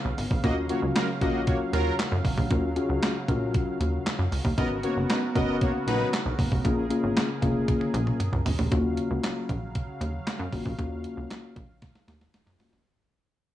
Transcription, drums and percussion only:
0.18 open hi-hat medium
0.31 kick loud
0.44 kick loud
0.44 closed hi-hat medium
0.69 closed hi-hat medium
0.96 snare loud
0.96 clap medium
0.96 closed hi-hat medium
1.21 kick medium
1.21 closed hi-hat medium
1.47 kick loud
1.47 closed hi-hat medium
1.73 closed hi-hat medium
1.99 snare loud
1.99 clap loud
1.99 closed hi-hat medium
2.25 kick medium
2.25 open hi-hat medium
2.38 kick loud
2.51 kick loud
2.51 closed hi-hat medium
2.76 closed hi-hat medium
3.03 snare loud
3.03 clap medium
3.03 closed hi-hat medium
3.28 kick medium
3.28 closed hi-hat medium
3.54 kick loud
3.54 closed hi-hat medium
3.81 closed hi-hat medium
4.06 snare loud
4.06 clap loud
4.06 closed hi-hat medium
4.32 open hi-hat medium
4.45 kick loud
4.58 kick loud
4.58 closed hi-hat medium
4.83 closed hi-hat medium
5.10 snare loud
5.10 clap medium
5.10 closed hi-hat medium
5.36 kick medium
5.36 closed hi-hat medium
5.61 kick loud
5.61 closed hi-hat medium
5.88 closed hi-hat medium
6.13 snare loud
6.13 clap loud
6.13 closed hi-hat medium
6.39 kick medium
6.39 open hi-hat medium
6.52 kick loud
6.65 kick loud
6.65 closed hi-hat medium
6.90 closed hi-hat medium
7.17 snare loud
7.17 clap medium
7.17 closed hi-hat medium
7.42 kick medium
7.42 closed hi-hat medium
7.68 kick loud
7.68 closed hi-hat medium
7.68 high tom medium
7.81 high tom medium
7.94 closed hi-hat medium
7.94 mid tom medium
8.07 mid tom medium
8.20 closed hi-hat medium
8.20 mid tom medium
8.33 mid tom medium
8.46 floor tom loud
8.46 open hi-hat medium
8.59 floor tom loud
8.72 kick loud
8.72 closed hi-hat medium
8.97 closed hi-hat medium
9.23 snare loud
9.23 clap medium
9.23 closed hi-hat medium
9.49 kick medium
9.49 closed hi-hat medium
9.75 kick loud
9.75 closed hi-hat medium
10.01 closed hi-hat medium
10.27 snare loud
10.27 clap loud
10.27 closed hi-hat medium
10.53 kick medium
10.53 open hi-hat medium
10.66 kick medium
10.79 kick loud
10.79 closed hi-hat medium
11.04 closed hi-hat medium
11.30 snare loud
11.30 clap medium
11.30 closed hi-hat medium
11.56 kick medium
11.56 closed hi-hat medium
11.82 kick loud
11.82 snare medium
11.82 closed hi-hat medium
11.95 snare medium
12.08 snare medium
12.08 closed hi-hat medium
12.21 snare medium
12.34 snare medium
12.34 closed hi-hat medium
12.47 snare medium
12.60 snare medium
12.60 open hi-hat medium
12.73 snare medium

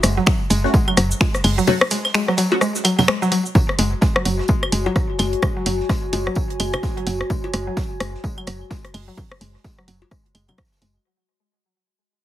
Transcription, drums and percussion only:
0.03 cross-stick soft
0.03 open hi-hat medium
0.03 tambourine medium
0.03 shaker medium
0.26 finger snap medium
0.26 kick loud
0.26 snare loud
0.26 tambourine medium
0.50 open hi-hat medium
0.50 tambourine medium
0.50 shaker soft
0.65 snare medium
0.74 kick loud
0.74 tambourine medium
0.88 claves medium
0.97 cross-stick soft
0.97 open hi-hat medium
0.97 tambourine medium
0.97 shaker soft
1.11 shaker soft
1.21 finger snap medium
1.21 kick loud
1.21 snare loud
1.21 tambourine medium
1.21 cowbell medium
1.34 cross-stick soft
1.34 closed hi-hat soft
1.34 shaker soft
1.44 open hi-hat medium
1.44 claves medium
1.58 shaker soft
1.67 tambourine medium
1.67 low conga loud
1.81 cross-stick medium
1.91 open hi-hat medium
1.91 tambourine medium
1.91 shaker medium
2.05 snare soft
2.05 claves medium
2.14 finger snap loud
2.14 snare loud
2.14 tambourine medium
2.28 cross-stick soft
2.37 snare loud
2.37 open hi-hat medium
2.37 tambourine medium
2.37 shaker soft
2.52 cowbell medium
2.61 cross-stick soft
2.61 tambourine medium
2.61 shaker soft
2.75 snare soft
2.75 shaker medium
2.84 snare loud
2.84 open hi-hat medium
2.84 tambourine medium
2.84 claves medium
2.84 shaker soft
2.98 snare loud
2.98 tambourine medium
2.98 low conga medium
2.98 claves medium
3.08 finger snap medium
3.08 cross-stick medium
3.08 snare loud
3.22 closed hi-hat soft
3.22 shaker soft
3.32 open hi-hat medium
3.32 tambourine medium
3.46 shaker soft
3.55 kick loud
3.55 tambourine medium
3.55 cowbell medium
3.55 low conga medium
3.69 cross-stick soft
3.79 open hi-hat medium
3.79 tambourine medium
4.01 kick loud
4.01 snare loud
4.01 tambourine medium
4.16 cross-stick medium
4.25 open hi-hat medium
4.25 tambourine medium
4.40 snare soft
4.48 kick loud
4.48 tambourine medium
4.63 cross-stick soft
4.63 claves medium
4.72 open hi-hat medium
4.72 tambourine medium
4.86 cowbell medium
4.96 kick loud
4.96 cross-stick soft
4.96 tambourine medium
5.19 snare loud
5.19 open hi-hat medium
5.19 tambourine medium
5.19 claves medium
5.33 closed hi-hat soft
5.42 kick loud
5.42 cross-stick medium
5.42 tambourine medium
5.42 low conga medium
5.66 open hi-hat medium
5.66 tambourine medium
5.80 snare soft
5.89 kick loud
5.89 cross-stick soft
5.89 snare loud
5.89 tambourine medium
6.13 open hi-hat loud
6.13 tambourine medium
6.13 cowbell medium
6.27 cross-stick soft
6.35 kick loud
6.35 tambourine medium
6.50 closed hi-hat soft
6.60 open hi-hat medium
6.60 tambourine medium
6.60 claves medium
6.73 cross-stick medium
6.73 closed hi-hat soft
6.73 low conga medium
6.73 claves medium
6.83 kick loud
6.83 snare loud
6.83 tambourine medium
6.97 closed hi-hat soft
7.06 snare medium
7.06 open hi-hat medium
7.06 tambourine medium
7.21 cross-stick soft
7.30 kick loud
7.30 tambourine medium
7.30 low conga medium
7.44 cowbell medium
7.54 cross-stick soft
7.54 open hi-hat loud
7.54 tambourine medium
7.77 kick loud
7.77 snare loud
7.77 tambourine medium
8.00 cross-stick medium
8.00 open hi-hat medium
8.00 tambourine medium
8.15 snare soft
8.24 kick loud
8.24 tambourine medium
8.38 claves medium
8.47 cross-stick soft
8.47 open hi-hat medium
8.47 tambourine medium
8.71 kick loud
8.71 snare loud
8.71 tambourine medium
8.71 cowbell medium
8.85 cross-stick soft
8.85 closed hi-hat soft
8.94 open hi-hat medium
8.94 claves medium
9.18 kick loud
9.18 tambourine medium
9.18 low conga medium
9.32 cross-stick medium
9.41 open hi-hat medium
9.41 tambourine medium
9.55 snare soft
9.64 kick loud
9.64 snare loud
9.64 tambourine medium
9.79 cross-stick soft
9.88 open hi-hat loud
9.88 tambourine medium
10.02 cowbell medium
10.11 kick loud
10.11 cross-stick soft
10.11 tambourine medium
10.26 closed hi-hat soft
10.35 open hi-hat medium
10.35 tambourine medium
10.35 claves medium
10.48 closed hi-hat soft
10.48 low conga medium
10.48 claves soft
10.58 kick loud
10.58 cross-stick medium
10.58 snare medium
10.58 tambourine medium
10.65 snare medium
10.65 tambourine medium
10.72 snare medium
10.72 tambourine medium
10.77 snare medium
10.77 tambourine medium
10.81 snare soft
10.81 open hi-hat medium
10.81 tambourine medium

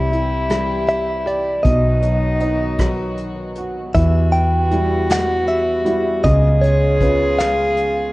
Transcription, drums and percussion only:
0.13 closed hi-hat soft
0.50 cross-stick medium
0.50 closed hi-hat medium
0.88 closed hi-hat soft
1.27 closed hi-hat soft
1.65 kick medium
1.65 closed hi-hat medium
2.02 closed hi-hat soft
2.40 closed hi-hat soft
2.79 kick medium
2.79 cross-stick medium
2.79 closed hi-hat medium
3.18 closed hi-hat soft
3.55 closed hi-hat soft
3.94 kick medium
3.94 closed hi-hat medium
4.33 closed hi-hat soft
4.71 closed hi-hat soft
5.09 snare medium
5.09 closed hi-hat medium
5.47 closed hi-hat soft
5.86 closed hi-hat soft
6.24 kick medium
6.24 closed hi-hat medium
6.63 closed hi-hat medium
7.01 kick medium
7.01 closed hi-hat soft
7.39 snare medium
7.39 closed hi-hat medium
7.76 closed hi-hat soft

